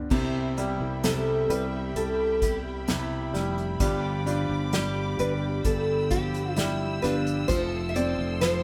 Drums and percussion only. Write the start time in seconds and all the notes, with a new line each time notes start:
0.11 kick, crash
0.58 closed hi-hat
1.04 snare, closed hi-hat
1.50 closed hi-hat
1.96 closed hi-hat
2.42 kick, closed hi-hat
2.88 snare, closed hi-hat
3.35 snare, closed hi-hat
3.58 closed hi-hat
3.80 kick, closed hi-hat
4.27 closed hi-hat
4.73 snare, closed hi-hat
5.19 closed hi-hat
5.64 kick, closed hi-hat
6.11 kick, closed hi-hat
6.34 closed hi-hat
6.57 snare, closed hi-hat
7.04 snare, closed hi-hat
7.27 closed hi-hat
7.49 kick, closed hi-hat
7.96 closed hi-hat
8.41 snare, closed hi-hat